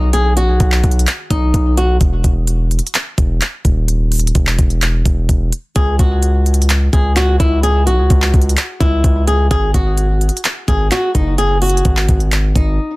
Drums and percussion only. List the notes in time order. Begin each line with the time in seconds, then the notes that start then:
0.13 closed hi-hat
0.37 closed hi-hat
0.60 kick, closed hi-hat
0.72 clap
0.84 kick, closed hi-hat
0.91 closed hi-hat
0.99 closed hi-hat
1.07 clap, closed hi-hat
1.30 kick, closed hi-hat
1.54 kick, closed hi-hat
1.77 closed hi-hat
2.01 kick, closed hi-hat
2.24 kick, closed hi-hat
2.47 closed hi-hat
2.71 closed hi-hat
2.79 closed hi-hat
2.87 closed hi-hat
2.95 clap, closed hi-hat
3.18 kick, closed hi-hat
3.41 clap, closed hi-hat
3.65 kick, closed hi-hat
3.88 closed hi-hat
4.12 closed hi-hat, open hi-hat
4.20 closed hi-hat
4.27 closed hi-hat
4.35 kick, closed hi-hat
4.47 clap
4.59 kick, closed hi-hat
4.70 closed hi-hat
4.82 clap, closed hi-hat
5.05 kick, closed hi-hat
5.29 kick, closed hi-hat
5.52 closed hi-hat
5.76 kick, closed hi-hat
5.99 kick, closed hi-hat
6.23 closed hi-hat
6.46 closed hi-hat
6.54 closed hi-hat
6.62 closed hi-hat
6.70 clap, closed hi-hat
6.93 kick, closed hi-hat
7.16 clap, closed hi-hat
7.40 kick, closed hi-hat
7.63 closed hi-hat
7.87 closed hi-hat
8.10 kick, closed hi-hat
8.22 clap
8.34 kick, closed hi-hat
8.42 closed hi-hat
8.49 closed hi-hat
8.57 clap, closed hi-hat
8.81 kick, closed hi-hat
9.04 kick, closed hi-hat
9.28 closed hi-hat
9.51 kick, closed hi-hat
9.74 kick, closed hi-hat
9.98 closed hi-hat
10.21 closed hi-hat
10.29 closed hi-hat
10.37 closed hi-hat
10.45 clap, closed hi-hat
10.68 kick, closed hi-hat
10.91 clap, closed hi-hat
11.15 kick, closed hi-hat
11.38 closed hi-hat
11.62 closed hi-hat, open hi-hat
11.69 closed hi-hat
11.77 closed hi-hat
11.85 kick, closed hi-hat
11.97 clap
12.09 kick, closed hi-hat
12.20 closed hi-hat
12.32 clap, closed hi-hat
12.56 kick, closed hi-hat